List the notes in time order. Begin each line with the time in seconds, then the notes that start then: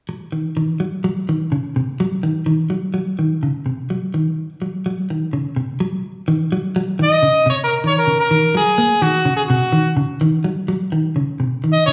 0.09 muted clean electric guitar stroke
0.32 D#3
0.57 D#3
0.80 F#3
1.04 F#3
1.29 D#3
1.52 C#3
1.76 C3
2.00 F#3
2.23 D#3
2.46 D#3
2.70 F#3
2.94 F#3
3.19 D#3
3.43 C#3
3.66 C3
3.90 F#3
4.14 D#3
4.62 F#3
4.86 F#3
5.10 D#3
5.33 C#3
5.56 C3
5.80 F#3
6.28 D#3
6.52 F#3
6.76 F#3
6.99 D#3 D#5
7.23 C#3
7.46 C3 C#5
7.64 A#4
7.84 D#3 C#5
7.98 A#4
8.07 C#3
8.20 A#4
8.31 D#3
8.55 F#3 G#4
8.78 A#3
9.02 D#3 F#4
9.25 C#3
9.37 G#4
9.48 C3 F#4
9.73 D#3
9.97 C#3
10.21 D#3
10.44 F#3
10.68 F#3
10.92 D#3
11.16 C#3
11.40 C3
11.64 D#3
11.72 D#5
11.86 C#3 C#5